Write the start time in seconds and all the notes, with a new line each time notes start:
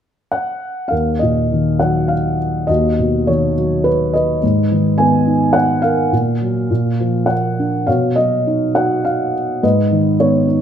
0.32 F#5
0.88 D#2 A#4 F5
1.19 A#2 D#5
1.52 D#3
1.79 F#3 F#5
2.08 F5
2.67 D#2 F#4 D#5
2.99 B2
3.27 D#3 C#5
3.57 F#3
3.84 B4
4.13 B4 D#5
4.43 G#2
4.72 D#3
4.98 B3 G#5
5.27 D#4
5.53 F#5
5.82 A#4 F5
6.12 A#2
6.41 F#3
6.70 A#2
7.00 F3
7.26 A#3 F#5
7.59 D4
7.87 B2 C#5 F5
8.16 F#3 D#5
8.47 D#4
8.75 F#4 F#5
9.05 F5
9.63 G#2 B4 D#5
9.91 D#3
10.20 B3 C#5
10.48 D#4